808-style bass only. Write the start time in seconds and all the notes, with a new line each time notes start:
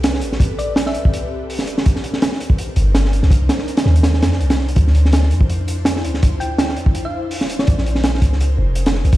Already playing: C2
0.22 A1
0.95 C2
1.59 E1
1.86 C2
2.40 D#2
2.77 G1
3.23 C2
3.86 D#2
4.22 F2
4.40 C2
4.76 D2
5.31 F2
6.04 D2
6.77 F2
7.41 D1
7.68 A#1
8.22 C#2
8.58 F1
9.05 A#1